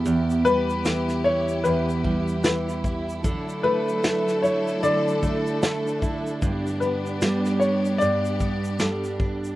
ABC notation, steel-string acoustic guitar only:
X:1
M:4/4
L:1/8
Q:"Swing 16ths" 1/4=75
K:D
V:1 name="Steel-string acoustic guitar" clef=bass
E,, G, E, E E,, G, E, E | D, A, A, E D, A, A, E | G,, B, G, D G,, B, G, D |]